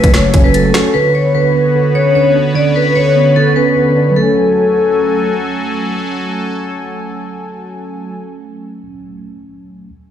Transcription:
0.00 0.33 F#1 loud
0.00 0.14 F#3 medium
0.00 0.91 F#3 medium
0.00 0.96 A3 medium
0.00 0.34 C#4 medium
0.00 0.14 F#4 medium
0.00 0.91 F#4 medium
0.00 0.91 A4 medium
0.00 0.11 B4 medium
0.00 0.91 G#5 medium
0.00 kick medium
0.00 closed hi-hat medium
0.13 0.53 F#3 medium
0.13 0.42 C#5 medium
0.13 finger snap medium
0.13 snare loud
0.13 closed hi-hat medium
0.34 0.73 F#1 loud
0.34 0.94 C#4 medium
0.34 kick loud
0.34 closed hi-hat medium
0.44 0.52 B4 medium
0.54 0.94 F#3 medium
0.54 0.92 A4 medium
0.54 closed hi-hat medium
0.74 0.94 F#4 medium
0.74 finger snap medium
0.74 snare loud
0.74 closed hi-hat medium
0.94 1.33 D3 medium
0.94 4.13 B3 medium
0.94 4.13 F#4 medium
0.94 1.11 B4 loud
0.94 4.13 B4 medium
0.94 4.13 C#5 medium
1.15 1.31 C#5 medium
1.34 1.73 D3 medium
1.34 1.91 B4 medium
1.55 2.55 B3 medium
1.75 2.14 D3 medium
1.95 2.96 C#4 medium
1.95 2.12 C#5 medium
2.15 2.54 D3 medium
2.15 2.32 C#5 medium
2.35 3.36 D4 medium
2.55 2.95 D3 medium
2.55 2.72 D5 medium
2.76 2.92 B4 medium
2.96 3.35 D3 medium
2.96 3.33 C#5 medium
3.16 4.16 B3 medium
3.36 3.75 D3 medium
3.36 3.53 A4 medium
3.56 4.16 C#4 medium
3.56 4.13 B4 medium
3.76 4.16 D3 medium
3.96 4.16 D4 medium
4.10 8.81 F#3 medium
4.16 8.14 F#3 medium
4.16 8.86 A3 medium
4.16 8.15 F#4 medium
4.16 8.15 A4 medium
4.16 5.33 A4 medium
4.16 8.15 G#5 medium
4.22 8.88 C#4 medium

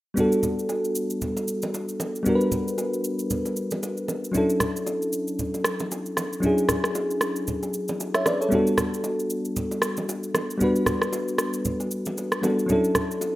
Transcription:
0.14 2.20 G3 medium
0.14 2.21 B3 medium
0.14 2.22 D4 medium
0.14 low conga medium
0.14 shaker medium
0.19 2.23 F#4 medium
0.19 2.23 A4 medium
0.32 shaker medium
0.43 low conga medium
0.43 shaker medium
0.59 shaker soft
0.69 high bongo medium
0.69 shaker medium
0.85 shaker soft
0.95 shaker medium
1.10 shaker medium
1.22 low conga medium
1.22 shaker medium
1.37 high bongo medium
1.37 shaker medium
1.48 shaker medium
1.62 low bongo medium
1.62 shaker medium
1.74 high bongo medium
1.74 shaker medium
1.89 shaker soft
2.00 low bongo medium
2.00 shaker medium
2.16 shaker soft
2.23 4.29 G3 medium
2.23 4.30 B3 medium
2.23 4.31 D4 medium
2.23 low conga medium
2.23 shaker medium
2.28 4.31 F#4 medium
2.28 2.35 A#4 medium
2.35 4.35 B4 medium
2.41 shaker medium
2.52 low conga medium
2.52 shaker medium
2.68 shaker soft
2.78 high bongo medium
2.78 shaker medium
2.94 shaker soft
3.04 shaker medium
3.19 shaker medium
3.30 low conga medium
3.30 shaker medium
3.45 high bongo medium
3.45 shaker soft
3.56 shaker medium
3.71 low bongo medium
3.71 shaker medium
3.83 high bongo medium
3.83 shaker medium
3.97 shaker soft
4.08 low bongo medium
4.08 shaker medium
4.24 shaker soft
4.32 6.38 F#3 medium
4.32 6.38 C#4 medium
4.32 6.39 D4 medium
4.32 low conga medium
4.32 shaker medium
4.36 6.40 E4 medium
4.36 6.41 A4 medium
4.50 shaker medium
4.60 cross-stick medium
4.60 low conga medium
4.60 shaker medium
4.76 shaker medium
4.87 high bongo medium
4.87 shaker medium
5.02 shaker soft
5.13 shaker medium
5.28 shaker medium
5.39 low conga medium
5.39 shaker medium
5.54 high bongo medium
5.54 shaker soft
5.64 cross-stick loud
5.64 shaker medium
5.79 low bongo medium
5.79 shaker medium
5.91 high bongo medium
5.91 shaker medium
6.06 shaker soft
6.17 cross-stick medium
6.17 low bongo medium
6.17 shaker medium
6.33 shaker soft
6.40 8.46 F#3 medium
6.40 8.47 C#4 medium
6.40 8.48 D4 medium
6.40 low conga medium
6.40 shaker medium
6.45 8.49 E4 medium
6.45 7.73 G#4 medium
6.58 shaker medium
6.69 cross-stick medium
6.69 low conga medium
6.69 shaker medium
6.84 cross-stick medium
6.84 shaker medium
6.95 high bongo medium
6.95 shaker medium
7.11 shaker soft
7.21 cross-stick medium
7.21 shaker medium
7.36 shaker medium
7.47 low conga medium
7.47 shaker medium
7.63 high bongo medium
7.63 shaker soft
7.74 shaker medium
7.88 low bongo medium
7.88 shaker medium
8.00 high bongo medium
8.00 shaker medium
8.14 8.26 C#5 medium
8.14 8.25 E5 medium
8.14 cross-stick medium
8.14 shaker soft
8.26 8.41 B4 medium
8.26 8.40 D5 medium
8.26 cross-stick medium
8.26 high bongo medium
8.26 low bongo medium
8.26 shaker medium
8.41 8.54 A4 medium
8.41 8.66 C#5 medium
8.41 shaker soft
8.49 10.55 G3 medium
8.49 10.56 B3 medium
8.49 10.57 D4 medium
8.49 low conga medium
8.49 shaker medium
8.53 10.57 F#4 medium
8.53 10.58 A4 medium
8.67 shaker medium
8.78 cross-stick loud
8.78 low conga medium
8.78 shaker medium
8.94 shaker soft
9.04 high bongo medium
9.04 shaker medium
9.19 shaker soft
9.30 shaker medium
9.45 shaker medium
9.56 low conga medium
9.56 shaker medium
9.71 high bongo medium
9.71 shaker soft
9.82 cross-stick loud
9.82 shaker medium
9.97 low bongo medium
9.97 shaker medium
10.09 high bongo medium
10.09 shaker medium
10.23 shaker soft
10.35 cross-stick medium
10.35 low bongo medium
10.35 shaker medium
10.50 shaker medium
10.58 12.38 G3 medium
10.58 12.39 B3 medium
10.58 12.40 D4 medium
10.58 low conga medium
10.58 shaker medium
10.62 12.40 F#4 medium
10.62 12.41 B4 medium
10.76 shaker medium
10.86 cross-stick medium
10.86 low conga medium
10.86 shaker medium
11.02 cross-stick medium
11.02 shaker soft
11.13 high bongo medium
11.13 shaker medium
11.28 shaker soft
11.38 cross-stick medium
11.38 shaker medium
11.54 shaker medium
11.65 low conga medium
11.65 shaker medium
11.80 high bongo medium
11.80 shaker soft
11.91 shaker medium
12.05 low bongo medium
12.05 shaker medium
12.18 high bongo medium
12.18 shaker medium
12.32 cross-stick medium
12.32 shaker soft
12.42 12.69 G3 medium
12.42 12.69 B3 soft
12.42 12.68 D4 soft
12.42 12.70 F#4 medium
12.42 12.70 A4 medium
12.42 low bongo medium
12.42 shaker medium
12.59 shaker soft
12.66 13.36 F#3 medium
12.66 13.36 C#4 medium
12.66 13.36 D4 medium
12.66 low conga medium
12.66 shaker medium
12.71 13.36 E4 medium
12.71 13.36 A4 medium
12.84 shaker medium
12.95 cross-stick medium
12.95 low conga medium
12.95 shaker medium
13.11 shaker medium
13.21 high bongo medium
13.21 shaker medium

